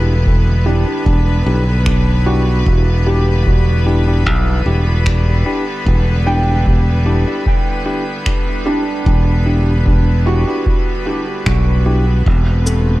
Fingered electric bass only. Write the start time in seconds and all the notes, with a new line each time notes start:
Already playing: E1
1.06 E1
1.46 B1
2.66 E1
4.26 B1
4.66 E1
5.86 E1
9.06 E1
11.46 B1
12.26 E1